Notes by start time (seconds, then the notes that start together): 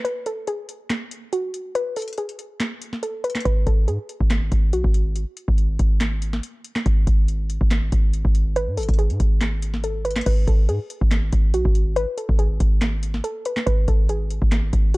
0.05 B4, closed hi-hat
0.26 A4, closed hi-hat
0.47 G#4, closed hi-hat
0.69 closed hi-hat
0.90 snare, clap, closed hi-hat
1.11 closed hi-hat
1.33 F#4, closed hi-hat
1.54 closed hi-hat
1.75 B4, closed hi-hat
1.96 A4, closed hi-hat, open hi-hat
2.02 closed hi-hat
2.08 closed hi-hat
2.13 closed hi-hat
2.18 G#4, closed hi-hat
2.29 closed hi-hat
2.39 closed hi-hat
2.60 snare, clap, closed hi-hat
2.82 closed hi-hat
2.93 snare
3.03 A4, closed hi-hat
3.24 B4, closed hi-hat
3.30 closed hi-hat
3.35 snare, clap, closed hi-hat
3.40 closed hi-hat
3.45 G#1 B4, kick, closed hi-hat
3.67 G#1 A4, kick, closed hi-hat
3.88 G#2 G#4, closed hi-hat
4.09 closed hi-hat
4.20 G#1, kick
4.30 snare, clap, closed hi-hat
4.52 G#1, kick, closed hi-hat
4.73 B1 F#4, closed hi-hat
4.84 G#1, kick
4.94 closed hi-hat
5.16 closed hi-hat
5.37 closed hi-hat
5.48 G#1, kick
5.58 closed hi-hat
5.79 G#1, kick, closed hi-hat
6.01 snare, clap, closed hi-hat
6.22 closed hi-hat
6.33 snare
6.43 closed hi-hat
6.65 closed hi-hat
6.76 snare, clap
6.86 G#1, kick, closed hi-hat
7.07 G#1, kick, closed hi-hat
7.28 closed hi-hat
7.50 closed hi-hat
7.61 G#1, kick
7.71 snare, clap, closed hi-hat
7.92 G#1, kick, closed hi-hat
8.13 closed hi-hat
8.25 G#1, kick
8.35 closed hi-hat
8.56 B4, closed hi-hat
8.67 G#2
8.77 G#1 A4, closed hi-hat, open hi-hat
8.83 closed hi-hat
8.89 G#1, kick, closed hi-hat
8.94 closed hi-hat
8.99 G#4, closed hi-hat
9.10 G#2, closed hi-hat
9.20 G#1, kick, closed hi-hat
9.41 snare, clap, closed hi-hat
9.62 closed hi-hat
9.74 snare
9.84 A4, closed hi-hat
10.05 B4, closed hi-hat
10.11 closed hi-hat
10.16 snare, clap, closed hi-hat
10.21 closed hi-hat
10.26 G#1 B4, kick, closed hi-hat, crash
10.47 G#1 A4, kick, closed hi-hat
10.69 G#2 G#4, closed hi-hat
10.90 closed hi-hat
11.01 G#1, kick
11.11 snare, clap, closed hi-hat
11.32 G#1, kick, closed hi-hat
11.54 B1 F#4, closed hi-hat
11.65 G#1, kick
11.75 closed hi-hat
11.96 B4, closed hi-hat
12.18 A4, closed hi-hat
12.29 G#1, kick
12.39 G#4, closed hi-hat
12.60 G#1, kick, closed hi-hat
12.82 snare, clap, closed hi-hat
13.03 closed hi-hat
13.14 snare
13.24 A4, closed hi-hat
13.45 B4, closed hi-hat
13.57 snare, clap
13.66 G#1 B4, kick, closed hi-hat
13.88 G#1 A4, kick, closed hi-hat
14.09 G#4, closed hi-hat
14.31 closed hi-hat
14.42 G#1, kick
14.52 snare, clap, closed hi-hat
14.73 G#1, kick, closed hi-hat
14.94 closed hi-hat